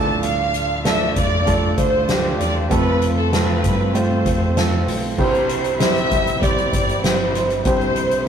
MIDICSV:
0, 0, Header, 1, 6, 480
1, 0, Start_track
1, 0, Key_signature, 0, "major"
1, 0, Tempo, 618429
1, 182, Time_signature, 4, 2, 24, 8
1, 6427, End_track
2, 0, Start_track
2, 0, Title_t, "Violin section"
2, 0, Program_c, 0, 48
2, 0, Note_on_c, 0, 81, 90
2, 177, Note_on_c, 0, 77, 93
2, 178, Note_off_c, 0, 81, 0
2, 629, Note_off_c, 0, 77, 0
2, 664, Note_on_c, 0, 76, 92
2, 904, Note_off_c, 0, 76, 0
2, 906, Note_on_c, 0, 74, 93
2, 1353, Note_off_c, 0, 74, 0
2, 1381, Note_on_c, 0, 72, 85
2, 1831, Note_off_c, 0, 72, 0
2, 1863, Note_on_c, 0, 74, 78
2, 1978, Note_on_c, 0, 72, 74
2, 1983, Note_off_c, 0, 74, 0
2, 2097, Note_on_c, 0, 71, 97
2, 2100, Note_off_c, 0, 72, 0
2, 2434, Note_off_c, 0, 71, 0
2, 2461, Note_on_c, 0, 69, 80
2, 2573, Note_off_c, 0, 69, 0
2, 2574, Note_on_c, 0, 71, 91
2, 3058, Note_off_c, 0, 71, 0
2, 3066, Note_on_c, 0, 72, 79
2, 3784, Note_off_c, 0, 72, 0
2, 4025, Note_on_c, 0, 72, 81
2, 4472, Note_off_c, 0, 72, 0
2, 4506, Note_on_c, 0, 76, 101
2, 4984, Note_off_c, 0, 76, 0
2, 4985, Note_on_c, 0, 74, 83
2, 5463, Note_off_c, 0, 74, 0
2, 5464, Note_on_c, 0, 72, 81
2, 5823, Note_off_c, 0, 72, 0
2, 5942, Note_on_c, 0, 72, 89
2, 6391, Note_off_c, 0, 72, 0
2, 6427, End_track
3, 0, Start_track
3, 0, Title_t, "Grand piano"
3, 0, Program_c, 1, 0
3, 0, Note_on_c, 1, 45, 47
3, 0, Note_on_c, 1, 57, 59
3, 0, Note_on_c, 1, 62, 55
3, 0, Note_on_c, 1, 65, 55
3, 0, Note_on_c, 1, 69, 66
3, 83, Control_c, 1, 64, 127
3, 585, Note_off_c, 1, 57, 0
3, 587, Note_off_c, 1, 62, 0
3, 588, Note_off_c, 1, 65, 0
3, 592, Note_off_c, 1, 69, 0
3, 635, Note_off_c, 1, 45, 0
3, 655, Note_on_c, 1, 57, 71
3, 661, Note_on_c, 1, 62, 61
3, 664, Note_on_c, 1, 65, 61
3, 670, Note_on_c, 1, 69, 74
3, 1087, Note_off_c, 1, 57, 0
3, 1090, Note_off_c, 1, 62, 0
3, 1091, Note_off_c, 1, 65, 0
3, 1094, Note_off_c, 1, 69, 0
3, 1130, Note_on_c, 1, 57, 65
3, 1137, Note_on_c, 1, 62, 54
3, 1138, Note_on_c, 1, 65, 61
3, 1144, Note_on_c, 1, 69, 73
3, 1564, Note_off_c, 1, 57, 0
3, 1568, Note_off_c, 1, 62, 0
3, 1568, Note_off_c, 1, 65, 0
3, 1571, Note_off_c, 1, 69, 0
3, 1614, Note_on_c, 1, 57, 55
3, 1621, Note_on_c, 1, 62, 56
3, 1625, Note_on_c, 1, 65, 53
3, 1631, Note_on_c, 1, 67, 75
3, 2046, Note_off_c, 1, 57, 0
3, 2050, Note_off_c, 1, 62, 0
3, 2052, Note_off_c, 1, 65, 0
3, 2055, Note_off_c, 1, 67, 0
3, 2093, Note_on_c, 1, 57, 73
3, 2099, Note_on_c, 1, 60, 62
3, 2102, Note_on_c, 1, 48, 59
3, 2102, Note_on_c, 1, 65, 67
3, 2107, Note_on_c, 1, 69, 79
3, 2112, Control_c, 1, 64, 0
3, 2255, Control_c, 1, 64, 127
3, 2525, Note_off_c, 1, 57, 0
3, 2529, Note_off_c, 1, 60, 0
3, 2530, Note_off_c, 1, 65, 0
3, 2533, Note_off_c, 1, 69, 0
3, 2578, Note_on_c, 1, 57, 64
3, 2581, Note_on_c, 1, 60, 60
3, 2586, Note_on_c, 1, 65, 59
3, 2591, Note_on_c, 1, 69, 74
3, 2791, Note_off_c, 1, 48, 0
3, 3008, Note_off_c, 1, 57, 0
3, 3010, Note_off_c, 1, 60, 0
3, 3012, Note_off_c, 1, 65, 0
3, 3014, Note_off_c, 1, 69, 0
3, 3057, Note_on_c, 1, 57, 68
3, 3061, Note_on_c, 1, 60, 66
3, 3068, Note_on_c, 1, 65, 61
3, 3073, Note_on_c, 1, 72, 72
3, 3487, Note_off_c, 1, 57, 0
3, 3489, Note_off_c, 1, 60, 0
3, 3493, Note_off_c, 1, 65, 0
3, 3495, Note_off_c, 1, 72, 0
3, 3538, Note_on_c, 1, 57, 61
3, 3543, Note_on_c, 1, 60, 55
3, 3547, Note_on_c, 1, 65, 57
3, 3550, Note_on_c, 1, 69, 67
3, 3968, Note_off_c, 1, 57, 0
3, 3970, Note_off_c, 1, 60, 0
3, 3972, Note_off_c, 1, 65, 0
3, 3974, Note_off_c, 1, 69, 0
3, 4020, Note_on_c, 1, 60, 67
3, 4023, Note_on_c, 1, 64, 70
3, 4027, Note_on_c, 1, 43, 60
3, 4029, Note_on_c, 1, 67, 67
3, 4033, Control_c, 1, 64, 0
3, 4033, Note_on_c, 1, 72, 82
3, 4157, Control_c, 1, 64, 127
3, 4449, Note_off_c, 1, 60, 0
3, 4450, Note_off_c, 1, 64, 0
3, 4453, Note_off_c, 1, 67, 0
3, 4455, Note_off_c, 1, 72, 0
3, 4497, Note_on_c, 1, 60, 76
3, 4502, Note_on_c, 1, 64, 65
3, 4506, Note_on_c, 1, 67, 67
3, 4511, Note_on_c, 1, 72, 73
3, 4713, Note_off_c, 1, 43, 0
3, 4927, Note_off_c, 1, 60, 0
3, 4930, Note_off_c, 1, 64, 0
3, 4931, Note_off_c, 1, 67, 0
3, 4934, Note_off_c, 1, 72, 0
3, 4972, Note_on_c, 1, 60, 66
3, 4976, Note_on_c, 1, 64, 61
3, 4981, Note_on_c, 1, 67, 61
3, 4986, Note_on_c, 1, 72, 73
3, 5404, Note_off_c, 1, 60, 0
3, 5406, Note_off_c, 1, 64, 0
3, 5409, Note_off_c, 1, 67, 0
3, 5412, Note_off_c, 1, 72, 0
3, 5453, Note_on_c, 1, 60, 66
3, 5459, Note_on_c, 1, 64, 54
3, 5462, Note_on_c, 1, 67, 57
3, 5465, Note_on_c, 1, 72, 74
3, 5885, Note_off_c, 1, 60, 0
3, 5888, Note_off_c, 1, 64, 0
3, 5889, Note_off_c, 1, 67, 0
3, 5891, Note_off_c, 1, 72, 0
3, 5939, Note_on_c, 1, 60, 79
3, 5943, Note_on_c, 1, 64, 64
3, 5947, Note_on_c, 1, 43, 65
3, 5947, Note_on_c, 1, 67, 64
3, 5951, Note_on_c, 1, 72, 81
3, 6368, Note_off_c, 1, 60, 0
3, 6370, Note_off_c, 1, 64, 0
3, 6372, Note_off_c, 1, 67, 0
3, 6374, Note_off_c, 1, 72, 0
3, 6427, Note_off_c, 1, 43, 0
3, 6427, End_track
4, 0, Start_track
4, 0, Title_t, "String section"
4, 0, Program_c, 2, 48
4, 0, Note_on_c, 2, 50, 61
4, 0, Note_on_c, 2, 57, 59
4, 0, Note_on_c, 2, 65, 78
4, 2080, Note_off_c, 2, 50, 0
4, 2095, Note_on_c, 2, 53, 66
4, 2098, Note_on_c, 2, 60, 73
4, 3988, Note_off_c, 2, 57, 0
4, 3989, Note_off_c, 2, 65, 0
4, 3999, Note_off_c, 2, 53, 0
4, 4001, Note_off_c, 2, 60, 0
4, 4021, Note_on_c, 2, 48, 67
4, 4021, Note_on_c, 2, 55, 63
4, 4022, Note_on_c, 2, 52, 62
4, 4023, Note_on_c, 2, 64, 76
4, 5922, Note_off_c, 2, 55, 0
4, 5938, Note_on_c, 2, 57, 70
4, 6427, Note_off_c, 2, 48, 0
4, 6427, Note_off_c, 2, 52, 0
4, 6427, Note_off_c, 2, 57, 0
4, 6427, Note_off_c, 2, 64, 0
4, 6427, End_track
5, 0, Start_track
5, 0, Title_t, "Fingered electric bass"
5, 0, Program_c, 3, 33
5, 0, Note_on_c, 3, 38, 79
5, 871, Note_off_c, 3, 38, 0
5, 900, Note_on_c, 3, 41, 82
5, 1350, Note_off_c, 3, 41, 0
5, 1379, Note_on_c, 3, 38, 89
5, 1830, Note_off_c, 3, 38, 0
5, 1862, Note_on_c, 3, 40, 70
5, 2085, Note_off_c, 3, 40, 0
5, 2102, Note_on_c, 3, 41, 100
5, 2791, Note_off_c, 3, 41, 0
5, 2824, Note_on_c, 3, 43, 84
5, 3272, Note_off_c, 3, 43, 0
5, 3303, Note_on_c, 3, 41, 89
5, 3751, Note_off_c, 3, 41, 0
5, 3780, Note_on_c, 3, 35, 76
5, 4004, Note_off_c, 3, 35, 0
5, 4025, Note_on_c, 3, 36, 99
5, 4713, Note_off_c, 3, 36, 0
5, 4744, Note_on_c, 3, 36, 88
5, 5192, Note_off_c, 3, 36, 0
5, 5220, Note_on_c, 3, 31, 82
5, 5910, Note_off_c, 3, 31, 0
5, 5942, Note_on_c, 3, 36, 110
5, 6427, Note_off_c, 3, 36, 0
5, 6427, End_track
6, 0, Start_track
6, 0, Title_t, "Drums"
6, 177, Note_on_c, 9, 42, 76
6, 255, Note_off_c, 9, 42, 0
6, 419, Note_on_c, 9, 42, 67
6, 496, Note_off_c, 9, 42, 0
6, 661, Note_on_c, 9, 38, 94
6, 661, Note_on_c, 9, 42, 79
6, 738, Note_off_c, 9, 38, 0
6, 739, Note_off_c, 9, 42, 0
6, 901, Note_on_c, 9, 42, 67
6, 902, Note_on_c, 9, 36, 76
6, 978, Note_off_c, 9, 42, 0
6, 979, Note_off_c, 9, 36, 0
6, 1139, Note_on_c, 9, 36, 87
6, 1140, Note_on_c, 9, 42, 78
6, 1217, Note_off_c, 9, 36, 0
6, 1218, Note_off_c, 9, 42, 0
6, 1378, Note_on_c, 9, 42, 68
6, 1379, Note_on_c, 9, 36, 80
6, 1455, Note_off_c, 9, 42, 0
6, 1456, Note_off_c, 9, 36, 0
6, 1618, Note_on_c, 9, 42, 69
6, 1619, Note_on_c, 9, 38, 101
6, 1696, Note_off_c, 9, 42, 0
6, 1697, Note_off_c, 9, 38, 0
6, 1865, Note_on_c, 9, 38, 32
6, 1866, Note_on_c, 9, 42, 69
6, 1942, Note_off_c, 9, 38, 0
6, 1944, Note_off_c, 9, 42, 0
6, 2101, Note_on_c, 9, 36, 98
6, 2101, Note_on_c, 9, 42, 85
6, 2179, Note_off_c, 9, 36, 0
6, 2179, Note_off_c, 9, 42, 0
6, 2342, Note_on_c, 9, 42, 76
6, 2419, Note_off_c, 9, 42, 0
6, 2584, Note_on_c, 9, 38, 96
6, 2584, Note_on_c, 9, 42, 85
6, 2661, Note_off_c, 9, 38, 0
6, 2662, Note_off_c, 9, 42, 0
6, 2824, Note_on_c, 9, 36, 73
6, 2824, Note_on_c, 9, 42, 67
6, 2902, Note_off_c, 9, 36, 0
6, 2902, Note_off_c, 9, 42, 0
6, 3065, Note_on_c, 9, 42, 81
6, 3143, Note_off_c, 9, 42, 0
6, 3303, Note_on_c, 9, 36, 76
6, 3305, Note_on_c, 9, 42, 72
6, 3380, Note_off_c, 9, 36, 0
6, 3382, Note_off_c, 9, 42, 0
6, 3546, Note_on_c, 9, 42, 76
6, 3547, Note_on_c, 9, 38, 93
6, 3624, Note_off_c, 9, 42, 0
6, 3625, Note_off_c, 9, 38, 0
6, 3787, Note_on_c, 9, 38, 35
6, 3788, Note_on_c, 9, 46, 62
6, 3864, Note_off_c, 9, 38, 0
6, 3866, Note_off_c, 9, 46, 0
6, 4022, Note_on_c, 9, 49, 86
6, 4024, Note_on_c, 9, 36, 91
6, 4100, Note_off_c, 9, 49, 0
6, 4101, Note_off_c, 9, 36, 0
6, 4148, Note_on_c, 9, 42, 33
6, 4225, Note_off_c, 9, 42, 0
6, 4263, Note_on_c, 9, 42, 71
6, 4340, Note_off_c, 9, 42, 0
6, 4379, Note_on_c, 9, 42, 48
6, 4457, Note_off_c, 9, 42, 0
6, 4503, Note_on_c, 9, 38, 111
6, 4503, Note_on_c, 9, 42, 87
6, 4580, Note_off_c, 9, 38, 0
6, 4581, Note_off_c, 9, 42, 0
6, 4627, Note_on_c, 9, 42, 35
6, 4705, Note_off_c, 9, 42, 0
6, 4744, Note_on_c, 9, 36, 76
6, 4744, Note_on_c, 9, 42, 69
6, 4822, Note_off_c, 9, 36, 0
6, 4822, Note_off_c, 9, 42, 0
6, 4867, Note_on_c, 9, 42, 51
6, 4944, Note_off_c, 9, 42, 0
6, 4983, Note_on_c, 9, 36, 99
6, 4988, Note_on_c, 9, 42, 85
6, 5061, Note_off_c, 9, 36, 0
6, 5065, Note_off_c, 9, 42, 0
6, 5108, Note_on_c, 9, 42, 35
6, 5186, Note_off_c, 9, 42, 0
6, 5222, Note_on_c, 9, 36, 82
6, 5225, Note_on_c, 9, 42, 70
6, 5299, Note_off_c, 9, 36, 0
6, 5303, Note_off_c, 9, 42, 0
6, 5347, Note_on_c, 9, 42, 46
6, 5425, Note_off_c, 9, 42, 0
6, 5464, Note_on_c, 9, 42, 76
6, 5465, Note_on_c, 9, 38, 104
6, 5542, Note_off_c, 9, 38, 0
6, 5542, Note_off_c, 9, 42, 0
6, 5705, Note_on_c, 9, 38, 37
6, 5706, Note_on_c, 9, 42, 74
6, 5782, Note_off_c, 9, 38, 0
6, 5784, Note_off_c, 9, 42, 0
6, 5823, Note_on_c, 9, 42, 42
6, 5900, Note_off_c, 9, 42, 0
6, 5937, Note_on_c, 9, 42, 88
6, 5941, Note_on_c, 9, 36, 101
6, 6014, Note_off_c, 9, 42, 0
6, 6018, Note_off_c, 9, 36, 0
6, 6062, Note_on_c, 9, 42, 32
6, 6140, Note_off_c, 9, 42, 0
6, 6176, Note_on_c, 9, 42, 75
6, 6254, Note_off_c, 9, 42, 0
6, 6296, Note_on_c, 9, 42, 51
6, 6373, Note_off_c, 9, 42, 0
6, 6427, End_track
0, 0, End_of_file